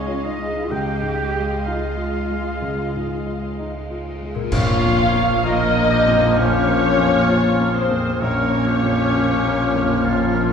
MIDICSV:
0, 0, Header, 1, 13, 480
1, 0, Start_track
1, 0, Tempo, 952381
1, 357, Time_signature, 4, 2, 24, 8
1, 2278, Tempo, 918836
1, 5416, End_track
2, 0, Start_track
2, 0, Title_t, "Flute section"
2, 0, Program_c, 0, 73
2, 0, Note_on_c, 0, 73, 78
2, 115, Note_off_c, 0, 73, 0
2, 118, Note_on_c, 0, 75, 66
2, 357, Note_off_c, 0, 75, 0
2, 357, Note_on_c, 0, 79, 83
2, 830, Note_off_c, 0, 79, 0
2, 835, Note_on_c, 0, 77, 65
2, 1800, Note_off_c, 0, 77, 0
2, 2280, Note_on_c, 0, 89, 83
2, 4190, Note_off_c, 0, 89, 0
2, 4221, Note_on_c, 0, 89, 81
2, 5416, Note_off_c, 0, 89, 0
2, 5416, End_track
3, 0, Start_track
3, 0, Title_t, "Violin section"
3, 0, Program_c, 1, 48
3, 0, Note_on_c, 1, 77, 66
3, 337, Note_off_c, 1, 77, 0
3, 356, Note_on_c, 1, 77, 58
3, 2155, Note_off_c, 1, 77, 0
3, 2285, Note_on_c, 1, 77, 103
3, 2746, Note_off_c, 1, 77, 0
3, 2763, Note_on_c, 1, 75, 116
3, 3247, Note_off_c, 1, 75, 0
3, 3251, Note_on_c, 1, 73, 113
3, 3971, Note_off_c, 1, 73, 0
3, 3971, Note_on_c, 1, 72, 94
3, 4209, Note_on_c, 1, 73, 103
3, 4211, Note_off_c, 1, 72, 0
3, 5416, Note_off_c, 1, 73, 0
3, 5416, End_track
4, 0, Start_track
4, 0, Title_t, "Oboe"
4, 0, Program_c, 2, 68
4, 0, Note_on_c, 2, 73, 74
4, 118, Note_off_c, 2, 73, 0
4, 123, Note_on_c, 2, 75, 65
4, 360, Note_on_c, 2, 79, 77
4, 368, Note_off_c, 2, 75, 0
4, 831, Note_off_c, 2, 79, 0
4, 835, Note_on_c, 2, 77, 63
4, 1780, Note_off_c, 2, 77, 0
4, 2282, Note_on_c, 2, 73, 89
4, 2745, Note_off_c, 2, 73, 0
4, 2766, Note_on_c, 2, 70, 86
4, 3002, Note_on_c, 2, 67, 86
4, 3010, Note_off_c, 2, 70, 0
4, 3729, Note_on_c, 2, 65, 64
4, 3737, Note_off_c, 2, 67, 0
4, 3966, Note_on_c, 2, 68, 80
4, 3974, Note_off_c, 2, 65, 0
4, 4206, Note_on_c, 2, 70, 69
4, 4214, Note_off_c, 2, 68, 0
4, 4450, Note_on_c, 2, 67, 83
4, 4457, Note_off_c, 2, 70, 0
4, 5169, Note_on_c, 2, 65, 64
4, 5177, Note_off_c, 2, 67, 0
4, 5415, Note_off_c, 2, 65, 0
4, 5416, End_track
5, 0, Start_track
5, 0, Title_t, "Violin section"
5, 0, Program_c, 3, 48
5, 0, Note_on_c, 3, 75, 72
5, 336, Note_off_c, 3, 75, 0
5, 357, Note_on_c, 3, 75, 59
5, 2155, Note_off_c, 3, 75, 0
5, 2279, Note_on_c, 3, 65, 103
5, 2743, Note_off_c, 3, 65, 0
5, 2765, Note_on_c, 3, 63, 94
5, 3247, Note_on_c, 3, 61, 96
5, 3248, Note_off_c, 3, 63, 0
5, 3969, Note_off_c, 3, 61, 0
5, 3971, Note_on_c, 3, 60, 75
5, 4211, Note_off_c, 3, 60, 0
5, 4219, Note_on_c, 3, 61, 89
5, 5416, Note_off_c, 3, 61, 0
5, 5416, End_track
6, 0, Start_track
6, 0, Title_t, "Cello section"
6, 0, Program_c, 4, 48
6, 0, Note_on_c, 4, 61, 86
6, 117, Note_off_c, 4, 61, 0
6, 121, Note_on_c, 4, 63, 72
6, 354, Note_off_c, 4, 63, 0
6, 360, Note_on_c, 4, 67, 87
6, 839, Note_on_c, 4, 65, 68
6, 841, Note_off_c, 4, 67, 0
6, 1802, Note_off_c, 4, 65, 0
6, 2279, Note_on_c, 4, 46, 83
6, 4189, Note_off_c, 4, 46, 0
6, 4210, Note_on_c, 4, 46, 77
6, 5416, Note_off_c, 4, 46, 0
6, 5416, End_track
7, 0, Start_track
7, 0, Title_t, "French horn section"
7, 0, Program_c, 5, 60
7, 2287, Note_on_c, 5, 53, 86
7, 2292, Note_on_c, 5, 65, 91
7, 4194, Note_off_c, 5, 53, 0
7, 4196, Note_off_c, 5, 65, 0
7, 4207, Note_on_c, 5, 65, 78
7, 4209, Note_on_c, 5, 53, 83
7, 5416, Note_off_c, 5, 53, 0
7, 5416, Note_off_c, 5, 65, 0
7, 5416, End_track
8, 0, Start_track
8, 0, Title_t, "Clarinet"
8, 0, Program_c, 6, 71
8, 2285, Note_on_c, 6, 58, 72
8, 4192, Note_off_c, 6, 58, 0
8, 4214, Note_on_c, 6, 58, 68
8, 5416, Note_off_c, 6, 58, 0
8, 5416, End_track
9, 0, Start_track
9, 0, Title_t, "Grand piano"
9, 0, Program_c, 7, 0
9, 0, Control_c, 7, 64, 127
9, 0, Note_on_c, 7, 37, 51
9, 0, Note_on_c, 7, 44, 42
9, 0, Note_on_c, 7, 56, 41
9, 0, Note_on_c, 7, 63, 47
9, 0, Note_on_c, 7, 65, 49
9, 39, Note_off_c, 7, 65, 0
9, 39, Note_on_c, 7, 65, 43
9, 132, Note_off_c, 7, 63, 0
9, 198, Note_off_c, 7, 56, 0
9, 198, Note_on_c, 7, 56, 44
9, 293, Note_off_c, 7, 65, 0
9, 336, Note_off_c, 7, 37, 0
9, 359, Note_on_c, 7, 37, 55
9, 367, Control_c, 7, 64, 0
9, 370, Note_off_c, 7, 44, 0
9, 450, Control_c, 7, 64, 127
9, 454, Note_off_c, 7, 56, 0
9, 512, Note_on_c, 7, 44, 42
9, 676, Note_on_c, 7, 56, 41
9, 772, Note_off_c, 7, 44, 0
9, 835, Note_on_c, 7, 63, 43
9, 935, Note_off_c, 7, 56, 0
9, 996, Note_on_c, 7, 65, 45
9, 1096, Note_off_c, 7, 63, 0
9, 1158, Note_on_c, 7, 56, 44
9, 1257, Note_off_c, 7, 65, 0
9, 1305, Note_off_c, 7, 37, 0
9, 1320, Note_on_c, 7, 37, 45
9, 1417, Note_off_c, 7, 56, 0
9, 1488, Note_on_c, 7, 44, 43
9, 1646, Note_on_c, 7, 56, 43
9, 1741, Note_off_c, 7, 44, 0
9, 1810, Note_on_c, 7, 63, 47
9, 1899, Note_off_c, 7, 56, 0
9, 1968, Note_on_c, 7, 65, 43
9, 2061, Note_off_c, 7, 63, 0
9, 2128, Note_on_c, 7, 56, 43
9, 2218, Note_off_c, 7, 65, 0
9, 2256, Note_off_c, 7, 37, 0
9, 2279, Note_on_c, 7, 34, 74
9, 2282, Note_off_c, 7, 56, 0
9, 2286, Control_c, 7, 64, 0
9, 2378, Control_c, 7, 64, 127
9, 2446, Note_on_c, 7, 41, 54
9, 2603, Note_on_c, 7, 58, 57
9, 2702, Note_off_c, 7, 41, 0
9, 2767, Note_on_c, 7, 65, 59
9, 2861, Note_off_c, 7, 58, 0
9, 2925, Note_on_c, 7, 58, 60
9, 3023, Note_off_c, 7, 65, 0
9, 3090, Note_on_c, 7, 41, 61
9, 3182, Note_off_c, 7, 58, 0
9, 3226, Note_off_c, 7, 34, 0
9, 3243, Note_on_c, 7, 34, 63
9, 3345, Note_off_c, 7, 41, 0
9, 3404, Note_on_c, 7, 58, 54
9, 3565, Note_on_c, 7, 41, 54
9, 3662, Note_off_c, 7, 58, 0
9, 3728, Note_on_c, 7, 65, 59
9, 3823, Note_off_c, 7, 41, 0
9, 3887, Note_on_c, 7, 58, 55
9, 3985, Note_off_c, 7, 65, 0
9, 4048, Note_on_c, 7, 41, 55
9, 4145, Note_off_c, 7, 58, 0
9, 4187, Note_off_c, 7, 34, 0
9, 4209, Note_on_c, 7, 34, 74
9, 4219, Control_c, 7, 64, 0
9, 4305, Note_off_c, 7, 41, 0
9, 4311, Control_c, 7, 64, 127
9, 4376, Note_on_c, 7, 58, 51
9, 4530, Note_on_c, 7, 41, 55
9, 4625, Note_off_c, 7, 58, 0
9, 4691, Note_on_c, 7, 65, 58
9, 4783, Note_off_c, 7, 41, 0
9, 4854, Note_on_c, 7, 58, 58
9, 4943, Note_off_c, 7, 65, 0
9, 5013, Note_on_c, 7, 41, 56
9, 5104, Note_off_c, 7, 58, 0
9, 5141, Note_off_c, 7, 34, 0
9, 5171, Note_on_c, 7, 34, 60
9, 5261, Note_off_c, 7, 41, 0
9, 5318, Note_on_c, 7, 58, 54
9, 5416, Note_off_c, 7, 34, 0
9, 5416, Note_off_c, 7, 58, 0
9, 5416, End_track
10, 0, Start_track
10, 0, Title_t, "Harp"
10, 0, Program_c, 8, 46
10, 0, Note_on_c, 8, 49, 58
10, 0, Note_on_c, 8, 56, 49
10, 360, Note_off_c, 8, 49, 0
10, 386, Note_off_c, 8, 56, 0
10, 2190, Note_on_c, 8, 46, 67
10, 2214, Note_on_c, 8, 58, 58
10, 2235, Note_on_c, 8, 65, 58
10, 4224, Note_off_c, 8, 46, 0
10, 4249, Note_off_c, 8, 58, 0
10, 4271, Note_off_c, 8, 65, 0
10, 5416, End_track
11, 0, Start_track
11, 0, Title_t, "Viola section"
11, 0, Program_c, 10, 48
11, 0, Note_on_c, 10, 56, 71
11, 338, Note_off_c, 10, 56, 0
11, 356, Note_on_c, 10, 56, 57
11, 2155, Note_off_c, 10, 56, 0
11, 2279, Note_on_c, 10, 58, 75
11, 2281, Note_on_c, 10, 53, 78
11, 4189, Note_off_c, 10, 58, 0
11, 4190, Note_off_c, 10, 53, 0
11, 4205, Note_on_c, 10, 53, 69
11, 4206, Note_on_c, 10, 58, 74
11, 5416, Note_off_c, 10, 53, 0
11, 5416, Note_off_c, 10, 58, 0
11, 5416, End_track
12, 0, Start_track
12, 0, Title_t, "Double bass section"
12, 0, Program_c, 11, 48
12, 0, Note_on_c, 11, 37, 67
12, 338, Note_off_c, 11, 37, 0
12, 359, Note_on_c, 11, 37, 60
12, 2156, Note_off_c, 11, 37, 0
12, 2285, Note_on_c, 11, 34, 78
12, 4192, Note_off_c, 11, 34, 0
12, 4213, Note_on_c, 11, 34, 74
12, 5416, Note_off_c, 11, 34, 0
12, 5416, End_track
13, 0, Start_track
13, 0, Title_t, "Drums"
13, 2278, Note_on_c, 9, 35, 85
13, 2278, Note_on_c, 9, 49, 79
13, 2330, Note_off_c, 9, 35, 0
13, 2330, Note_off_c, 9, 49, 0
13, 5416, End_track
0, 0, End_of_file